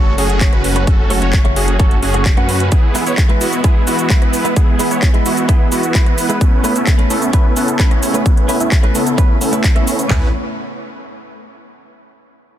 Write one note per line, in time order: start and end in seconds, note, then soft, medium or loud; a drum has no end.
0.00 0.16 F#1 loud
0.00 2.68 C#3 medium
0.00 2.68 F#3 medium
0.00 0.15 A3 loud
0.00 2.68 A3 medium
0.00 0.13 C#4 loud
0.00 0.15 C#4 medium
0.00 0.13 F#4 medium
0.00 0.15 F#4 medium
0.00 0.13 A4 loud
0.00 0.16 C#5 loud
0.17 0.50 F#1 medium
0.17 0.28 A3 medium
0.17 0.50 C#4 loud
0.17 0.28 C#4 medium
0.17 0.50 F#4 medium
0.17 0.28 F#4 medium
0.17 0.50 G#4 loud
0.17 0.29 C#5 medium
0.17 open hi-hat loud
0.30 closed hi-hat medium
0.40 0.51 A3 medium
0.40 0.51 C#4 medium
0.40 0.52 F#4 medium
0.40 0.52 C#5 medium
0.40 kick loud
0.40 clap loud
0.40 closed hi-hat medium
0.53 0.85 F#1 medium
0.53 0.84 C#4 medium
0.53 0.84 F#4 medium
0.53 0.84 B4 loud
0.53 cross-stick medium
0.53 closed hi-hat soft
0.64 open hi-hat loud
0.75 0.86 A3 medium
0.75 0.86 C#4 medium
0.75 0.86 F#4 medium
0.75 0.86 C#5 loud
0.75 closed hi-hat medium
0.87 1.20 F#1 loud
0.87 1.19 C#4 medium
0.87 1.19 F#4 medium
0.87 1.19 A4 loud
0.87 kick loud
0.87 closed hi-hat medium
1.10 1.20 A3 medium
1.10 1.21 C#4 medium
1.10 1.21 F#4 medium
1.10 1.21 C#5 loud
1.10 open hi-hat loud
1.22 1.54 F#1 loud
1.22 1.40 C#4 loud
1.22 1.40 F#4 loud
1.22 1.40 C#5 loud
1.22 closed hi-hat soft
1.33 kick loud
1.33 clap loud
1.33 closed hi-hat medium
1.44 1.61 A3 medium
1.44 1.61 C#4 medium
1.44 1.62 F#4 medium
1.44 1.62 C#5 medium
1.44 closed hi-hat soft
1.56 1.77 F#1 loud
1.56 1.77 C#4 medium
1.56 1.77 F#4 medium
1.56 1.77 G#4 loud
1.56 open hi-hat loud
1.68 closed hi-hat soft
1.79 2.00 F#1 loud
1.79 2.00 A3 medium
1.79 2.00 C#4 medium
1.79 1.98 C#4 loud
1.79 1.98 F#4 medium
1.79 2.00 F#4 medium
1.79 1.98 A4 loud
1.79 2.00 C#5 medium
1.79 kick loud
1.79 closed hi-hat medium
1.91 closed hi-hat soft
2.03 2.35 F#1 medium
2.03 2.34 C#4 loud
2.03 2.34 F#4 medium
2.03 2.34 G#4 loud
2.03 open hi-hat loud
2.13 2.24 A3 medium
2.13 2.24 C#4 medium
2.13 2.25 F#4 medium
2.13 2.25 C#5 medium
2.13 closed hi-hat medium
2.25 kick loud
2.25 clap loud
2.25 closed hi-hat medium
2.36 2.70 F#2 loud
2.36 2.47 A3 medium
2.36 2.47 C#4 medium
2.36 2.69 C#4 medium
2.36 2.69 F#4 medium
2.36 2.48 F#4 medium
2.36 2.69 B4 loud
2.36 2.48 F#5 loud
2.36 cross-stick medium
2.36 closed hi-hat soft
2.49 open hi-hat loud
2.60 closed hi-hat soft
2.72 6.37 E3 medium
2.72 6.37 G#3 medium
2.72 10.06 B3 medium
2.72 3.04 B3 medium
2.72 3.04 E4 medium
2.72 3.04 G#4 loud
2.72 kick loud
2.72 closed hi-hat medium
2.72 cabasa soft
2.94 3.05 G#3 medium
2.94 3.05 B3 medium
2.94 3.05 E4 medium
2.94 3.06 B4 medium
2.94 open hi-hat loud
2.94 cabasa medium
3.06 3.25 B3 loud
3.06 3.25 E4 medium
3.06 3.25 C#5 loud
3.06 closed hi-hat medium
3.06 cabasa soft
3.18 kick loud
3.18 clap loud
3.18 closed hi-hat medium
3.18 cabasa soft
3.29 3.46 G#3 loud
3.29 3.46 B3 medium
3.29 3.46 E4 medium
3.29 3.46 B4 loud
3.29 closed hi-hat soft
3.41 3.61 B3 medium
3.41 3.61 E4 medium
3.41 3.61 F#4 loud
3.41 open hi-hat loud
3.41 cabasa medium
3.53 closed hi-hat soft
3.53 cabasa soft
3.63 3.84 G#3 medium
3.63 3.82 B3 loud
3.63 3.84 B3 medium
3.63 3.85 E4 medium
3.63 3.82 E4 medium
3.63 3.82 G#4 loud
3.63 3.85 B4 loud
3.63 kick loud
3.63 closed hi-hat medium
3.63 cabasa soft
3.86 3.97 G#3 medium
3.86 3.97 B3 medium
3.86 4.19 B3 loud
3.86 3.98 E4 medium
3.86 4.19 E4 medium
3.86 4.19 F#4 loud
3.86 3.98 B4 medium
3.86 open hi-hat loud
3.86 cabasa medium
3.99 closed hi-hat medium
3.99 cabasa soft
4.10 4.20 G#3 medium
4.10 4.21 B3 medium
4.10 4.21 E4 medium
4.10 4.21 B4 medium
4.10 kick loud
4.10 clap loud
4.10 closed hi-hat medium
4.10 cabasa soft
4.22 4.54 B3 medium
4.22 4.54 E4 medium
4.22 4.54 B4 loud
4.22 cross-stick medium
4.22 closed hi-hat soft
4.33 open hi-hat loud
4.33 cabasa medium
4.44 4.55 G#3 medium
4.44 4.55 B3 medium
4.44 4.55 E4 medium
4.44 4.56 B4 loud
4.44 closed hi-hat medium
4.44 cabasa soft
4.56 4.88 B3 medium
4.56 4.88 E4 medium
4.56 4.88 G#4 loud
4.56 kick loud
4.56 closed hi-hat medium
4.56 cabasa soft
4.79 4.90 G#3 medium
4.79 4.90 B3 medium
4.79 4.90 E4 medium
4.79 4.90 B4 loud
4.79 open hi-hat loud
4.79 cabasa medium
4.91 5.09 B3 loud
4.91 5.09 E4 medium
4.91 5.09 C#5 loud
4.91 closed hi-hat medium
4.91 cabasa soft
5.02 kick loud
5.02 clap loud
5.02 closed hi-hat medium
5.02 cabasa soft
5.13 5.30 G#3 medium
5.13 5.31 B3 medium
5.13 5.31 E4 medium
5.13 5.31 B4 loud
5.13 closed hi-hat soft
5.26 5.46 B3 medium
5.26 5.46 E4 medium
5.26 5.46 F#4 loud
5.26 open hi-hat loud
5.26 cabasa medium
5.37 closed hi-hat medium
5.37 cabasa soft
5.48 5.69 G#3 medium
5.48 5.67 B3 loud
5.48 5.69 B3 medium
5.48 5.69 E4 medium
5.48 5.67 E4 loud
5.48 5.67 G#4 loud
5.48 5.69 B4 loud
5.48 kick loud
5.48 closed hi-hat medium
5.48 cabasa soft
5.71 5.82 G#3 medium
5.71 6.04 B3 loud
5.71 5.82 B3 medium
5.71 6.04 E4 medium
5.71 5.82 E4 medium
5.71 6.04 F#4 loud
5.71 5.83 B4 medium
5.71 open hi-hat loud
5.71 cabasa medium
5.83 closed hi-hat medium
5.83 cabasa soft
5.94 6.05 G#3 medium
5.94 6.05 B3 medium
5.94 6.05 E4 medium
5.94 6.06 B4 medium
5.94 kick loud
5.94 clap loud
5.94 closed hi-hat medium
5.94 cabasa soft
6.06 6.38 B3 medium
6.06 6.38 E4 medium
6.06 6.38 B4 loud
6.06 cross-stick medium
6.06 closed hi-hat soft
6.18 open hi-hat loud
6.18 cabasa medium
6.29 6.39 G#3 medium
6.29 6.40 B3 medium
6.29 6.40 E4 medium
6.29 6.40 B4 loud
6.29 closed hi-hat medium
6.29 cabasa soft
6.41 10.07 C#3 medium
6.41 8.24 A3 medium
6.41 6.73 A3 medium
6.41 6.73 B3 medium
6.41 6.73 C#4 medium
6.41 6.73 E4 medium
6.41 6.73 B4 loud
6.41 kick loud
6.41 closed hi-hat medium
6.41 cabasa soft
6.64 6.74 A3 medium
6.64 6.74 C#4 medium
6.64 6.75 E4 medium
6.64 6.75 B4 loud
6.64 open hi-hat loud
6.64 cabasa medium
6.76 6.94 A3 loud
6.76 6.94 B3 medium
6.76 6.94 C#4 medium
6.76 6.94 E4 medium
6.76 6.94 E5 loud
6.76 closed hi-hat medium
6.76 cabasa soft
6.87 kick loud
6.87 clap loud
6.87 closed hi-hat medium
6.87 cabasa soft
6.98 7.15 A3 loud
6.98 7.15 C#4 medium
6.98 7.15 E4 medium
6.98 7.16 B4 medium
6.98 closed hi-hat soft
7.10 7.31 A3 medium
7.10 7.31 B3 medium
7.10 7.31 C#4 medium
7.10 7.31 E4 medium
7.10 7.31 A4 loud
7.10 open hi-hat loud
7.10 cabasa medium
7.22 closed hi-hat medium
7.22 cabasa soft
7.33 7.53 A3 medium
7.33 7.52 A3 loud
7.33 7.52 B3 loud
7.33 7.54 C#4 medium
7.33 7.52 C#4 medium
7.33 7.52 E4 medium
7.33 7.54 E4 medium
7.33 7.52 B4 loud
7.33 7.54 B4 medium
7.33 kick loud
7.33 closed hi-hat medium
7.33 cabasa soft
7.56 7.67 A3 medium
7.56 7.88 A3 loud
7.56 7.88 B3 medium
7.56 7.88 C#4 medium
7.56 7.67 C#4 medium
7.56 7.88 E4 medium
7.56 7.67 E4 medium
7.56 7.88 A4 loud
7.56 7.67 B4 medium
7.56 open hi-hat loud
7.56 cabasa medium
7.68 closed hi-hat medium
7.68 cabasa soft
7.79 7.90 A3 medium
7.79 7.90 C#4 medium
7.79 7.90 E4 medium
7.79 7.90 B4 medium
7.79 kick loud
7.79 clap loud
7.79 closed hi-hat medium
7.79 cabasa soft
7.91 8.23 A3 medium
7.91 8.23 B3 medium
7.91 8.23 C#4 medium
7.91 8.23 E4 medium
7.91 8.23 C#5 loud
7.91 cross-stick medium
7.91 closed hi-hat soft
8.03 open hi-hat loud
8.03 cabasa medium
8.13 8.24 A3 loud
8.13 8.24 C#4 medium
8.13 8.25 E4 medium
8.13 8.25 B4 medium
8.13 closed hi-hat medium
8.13 cabasa soft
8.26 8.58 A3 loud
8.26 8.58 B3 medium
8.26 8.58 C#4 medium
8.26 8.58 E4 medium
8.26 8.58 B4 loud
8.26 kick loud
8.26 closed hi-hat medium
8.26 cabasa soft
8.37 closed hi-hat soft
8.48 8.59 A3 medium
8.48 8.59 C#4 medium
8.48 8.59 E4 medium
8.48 8.59 B4 medium
8.48 open hi-hat loud
8.48 cabasa medium
8.60 8.79 A3 loud
8.60 8.79 B3 medium
8.60 8.79 C#4 medium
8.60 8.79 E4 medium
8.60 8.79 E5 loud
8.60 closed hi-hat medium
8.60 cabasa soft
8.72 kick loud
8.72 clap loud
8.72 closed hi-hat medium
8.72 cabasa soft
8.83 9.00 A3 loud
8.83 9.00 C#4 medium
8.83 9.00 E4 medium
8.83 9.00 B4 loud
8.83 cross-stick medium
8.83 closed hi-hat soft
8.95 9.15 A3 medium
8.95 9.15 B3 medium
8.95 9.15 C#4 medium
8.95 9.15 E4 medium
8.95 9.15 A4 medium
8.95 open hi-hat loud
8.95 cabasa medium
9.07 closed hi-hat medium
9.07 cabasa soft
9.17 9.38 A3 loud
9.17 9.36 A3 loud
9.17 9.36 B3 medium
9.17 9.38 C#4 medium
9.17 9.36 C#4 medium
9.17 9.36 E4 medium
9.17 9.38 E4 medium
9.17 9.36 B4 loud
9.17 9.39 B4 loud
9.17 kick loud
9.17 closed hi-hat medium
9.17 cabasa soft
9.41 9.73 A3 loud
9.41 9.73 B3 medium
9.41 9.73 C#4 medium
9.41 9.73 E4 medium
9.41 9.73 A4 loud
9.41 open hi-hat loud
9.41 cabasa medium
9.52 9.63 A3 medium
9.52 9.63 C#4 medium
9.52 9.63 E4 medium
9.52 9.63 B4 medium
9.52 closed hi-hat medium
9.52 cabasa soft
9.64 kick loud
9.64 clap loud
9.64 closed hi-hat medium
9.64 cabasa soft
9.75 9.86 A3 loud
9.75 10.08 A3 medium
9.75 10.08 B3 medium
9.75 9.86 C#4 medium
9.75 10.08 C#4 medium
9.75 10.08 E4 medium
9.75 9.86 E4 medium
9.75 10.08 C#5 loud
9.75 9.86 E5 loud
9.75 cross-stick medium
9.75 closed hi-hat soft
9.87 open hi-hat loud
9.87 cabasa medium
9.99 closed hi-hat medium
9.99 cabasa soft
10.09 10.32 A1 loud
10.09 10.32 A2 medium
10.09 10.27 A3 medium
10.09 10.32 A3 medium
10.09 10.28 A3 medium
10.09 10.32 B3 medium
10.09 10.28 B3 medium
10.09 10.27 C#4 medium
10.09 10.32 C#4 medium
10.09 10.28 C#4 medium
10.09 10.28 E4 medium
10.09 10.32 E4 medium
10.09 10.28 E4 medium
10.09 10.28 B4 loud
10.09 10.29 B4 medium
10.09 kick loud
10.09 clap medium
10.09 floor tom loud